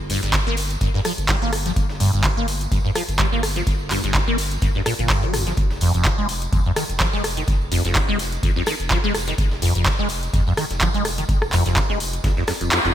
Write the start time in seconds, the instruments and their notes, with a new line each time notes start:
Already playing: analog synth bass G1
0.10 acid bass G2, closed hi-hat, open hi-hat, tambourine
0.23 analog synth bass G1, acid bass G2, snare, closed hi-hat, tambourine
0.33 acid bass G3, kick, snare, clap, closed hi-hat, tambourine
0.47 analog synth bass G1, acid bass A#3, tambourine
0.57 closed hi-hat, open hi-hat, tambourine
0.70 closed hi-hat, tambourine
0.81 analog synth bass G1, acid bass G2, kick, closed hi-hat, tambourine
0.94 acid bass G2, snare, tambourine
1.05 acid bass F3, cross-stick, closed hi-hat, open hi-hat, tambourine
1.18 analog synth bass G1, closed hi-hat, tambourine
1.28 acid bass G3, kick, snare, clap, closed hi-hat, tambourine
1.42 analog synth bass G1, acid bass A#3, closed hi-hat, tambourine
1.53 cross-stick, closed hi-hat, open hi-hat, tambourine
1.66 acid bass F3, snare, closed hi-hat, tambourine
1.76 analog synth bass G1, kick, closed hi-hat, tambourine
1.90 snare, tambourine
2.00 acid bass G2, closed hi-hat, open hi-hat, tambourine
2.13 analog synth bass G1, acid bass G2, closed hi-hat, tambourine
2.23 acid bass G3, kick, snare, clap, closed hi-hat, tambourine
2.37 analog synth bass G1, acid bass A#3, tambourine
2.48 closed hi-hat, open hi-hat, tambourine
2.61 closed hi-hat, tambourine
2.72 analog synth bass G1, acid bass G2, kick, closed hi-hat, tambourine
2.85 acid bass G2, tambourine
2.95 acid bass F3, cross-stick, closed hi-hat, open hi-hat, tambourine
3.09 analog synth bass G1, closed hi-hat, tambourine
3.19 acid bass G3, kick, snare, clap, closed hi-hat, tambourine
3.32 analog synth bass G1, acid bass A#3, tambourine
3.43 cross-stick, closed hi-hat, open hi-hat, tambourine
3.56 acid bass F3, closed hi-hat, tambourine
3.67 analog synth bass G1, kick, closed hi-hat, tambourine
3.79 tambourine
3.91 acid bass G2, clap, closed hi-hat, open hi-hat, tambourine
4.04 analog synth bass G1, acid bass G2, snare, closed hi-hat, tambourine
4.14 acid bass G3, kick, snare, clap, closed hi-hat, tambourine
4.28 analog synth bass G1, acid bass A#3, tambourine
4.38 closed hi-hat, open hi-hat, tambourine
4.51 closed hi-hat, tambourine
4.62 analog synth bass G1, acid bass G2, kick, closed hi-hat, tambourine
4.75 acid bass G2, snare, tambourine
4.86 acid bass A#2, cross-stick, closed hi-hat, open hi-hat, tambourine
4.99 analog synth bass G1, acid bass A#2, closed hi-hat, tambourine
5.10 acid bass G2, kick, snare, clap, closed hi-hat, tambourine
5.22 analog synth bass G1, acid bass G3, closed hi-hat, tambourine
5.34 acid bass F2, cross-stick, closed hi-hat, open hi-hat, tambourine
5.47 acid bass F3, snare, closed hi-hat, tambourine
5.57 analog synth bass F1, kick, closed hi-hat, tambourine
5.71 snare, tambourine
5.81 acid bass F2, closed hi-hat, open hi-hat, tambourine
5.94 analog synth bass F1, acid bass F2, closed hi-hat, tambourine
6.05 acid bass F3, kick, snare, clap, closed hi-hat, tambourine
6.18 analog synth bass F1, acid bass G#3, tambourine
6.29 closed hi-hat, open hi-hat, tambourine
6.42 closed hi-hat, tambourine
6.52 analog synth bass F1, acid bass F2, kick, closed hi-hat, tambourine
6.65 acid bass F2, tambourine
6.76 acid bass D#3, cross-stick, closed hi-hat, open hi-hat, tambourine
6.89 analog synth bass F1, closed hi-hat, tambourine
7.00 acid bass F3, kick, snare, clap, closed hi-hat, tambourine
7.13 analog synth bass F1, acid bass G#3, tambourine
7.24 cross-stick, closed hi-hat, open hi-hat, tambourine
7.37 acid bass D#3, closed hi-hat, tambourine
7.47 analog synth bass F1, kick, closed hi-hat, tambourine
7.61 tambourine
7.72 acid bass F2, closed hi-hat, open hi-hat, tambourine
7.85 analog synth bass F1, acid bass F2, snare, closed hi-hat, tambourine
7.95 acid bass F3, kick, snare, clap, closed hi-hat, tambourine
8.08 analog synth bass F1, acid bass G#3, tambourine
8.19 closed hi-hat, open hi-hat, tambourine
8.32 closed hi-hat, tambourine
8.43 analog synth bass F1, acid bass F2, kick, closed hi-hat, tambourine
8.56 acid bass F2, snare, tambourine
8.66 acid bass D#3, cross-stick, closed hi-hat, open hi-hat, tambourine
8.80 analog synth bass F1, closed hi-hat, tambourine
8.90 acid bass F3, kick, snare, clap, closed hi-hat, tambourine
9.04 analog synth bass F1, acid bass G#3, closed hi-hat, tambourine
9.14 cross-stick, closed hi-hat, open hi-hat, tambourine
9.27 acid bass D#3, snare, closed hi-hat, tambourine
9.38 analog synth bass F1, kick, closed hi-hat, tambourine
9.51 snare, tambourine
9.62 acid bass F2, closed hi-hat, open hi-hat, tambourine
9.75 analog synth bass F1, acid bass F2, closed hi-hat, tambourine
9.86 acid bass F3, kick, snare, clap, closed hi-hat, tambourine
9.99 analog synth bass F1, acid bass G#3, tambourine
10.09 closed hi-hat, open hi-hat, tambourine
10.23 closed hi-hat, tambourine
10.34 analog synth bass F1, acid bass F2, kick, closed hi-hat, tambourine
10.47 acid bass F2, tambourine
10.57 acid bass D#3, cross-stick, closed hi-hat, open hi-hat, tambourine
10.70 analog synth bass F1, snare, closed hi-hat, tambourine
10.80 acid bass F3, kick, clap, closed hi-hat, tambourine
10.94 analog synth bass F1, acid bass G#3, closed hi-hat, tambourine
11.05 cross-stick, snare, open hi-hat, tambourine
11.18 acid bass D#3, closed hi-hat, tambourine
11.29 analog synth bass F1, kick, closed hi-hat, tambourine
11.42 cross-stick, tambourine
11.53 acid bass F2, clap, closed hi-hat, open hi-hat, tambourine
11.65 analog synth bass F1, acid bass F2, snare, closed hi-hat, tambourine
11.76 acid bass F3, kick, snare, clap, closed hi-hat, tambourine
11.90 analog synth bass F1, acid bass G#3, tambourine
12.00 open hi-hat, tambourine
12.13 closed hi-hat, tambourine
12.24 analog synth bass F1, acid bass F2, kick, snare, closed hi-hat, tambourine
12.37 acid bass F2, snare, tambourine
12.47 acid bass F2, cross-stick, snare, closed hi-hat, open hi-hat, tambourine
12.61 analog synth bass D#1, acid bass F2, closed hi-hat, tambourine
12.71 acid bass F2, snare, clap, closed hi-hat, open hi-hat, tambourine
12.85 analog synth bass F1, acid bass F2, closed hi-hat, tambourine